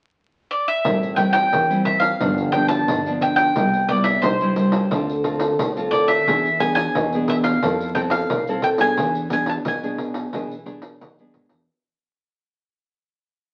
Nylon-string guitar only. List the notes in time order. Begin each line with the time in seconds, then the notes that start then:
0.85 A2 G3 C4 E4
1.17 G3 C4 E4
1.52 E3
1.70 G3 C4 E4
2.21 G2 F3 B3 D4
2.54 F3 B3 D4
2.88 D3
3.07 F3 B3 D4
3.57 C3 G3 B3 E4
3.89 G3 B3 E4
4.24 G2
4.41 G3 E4
4.91 D3 C4 F4 A4
5.24 C4 F4 A4
5.60 A2
5.77 C4 F4 A4
6.26 E3 B3 D4 G#4
6.59 B3 D4 G#4
6.95 B2
7.14 B3 D4 G#4
7.62 F3 C4 E4 A4
7.94 C4 E4 A4
8.49 C4 E4 A4
8.80 B3 D4 G#4
8.99 E3
9.31 B3 D4 G#4
9.66 B2
9.83 B3 D4 G#4
10.33 E3 B3 D4 G#4
10.66 B3 D4 G#4
11.01 B2
11.20 B3 D4 G#4